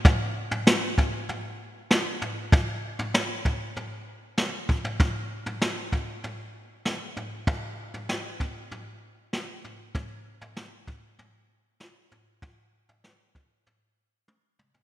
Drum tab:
SD |----o-------o---|----o-------o---|----o-------o---|----o-------o---|
T1 |----------------|----------------|----------------|----------------|
T2 |----------------|----------------|----------------|----------------|
FT |o--o--o-o-----o-|o--o--o-o-----oo|o--o--o-o-----o-|o--o--o-o-----o-|
BD |o-----o---------|o-----o-------o-|o-----o---------|o-----o---------|

SD |----o-------o---|----o-----------|
T1 |----------------|------------o---|
T2 |----------------|--------------o-|
FT |o--o--o-o-----o-|o--o--o-o------o|
BD |o-----o---------|o-----o---------|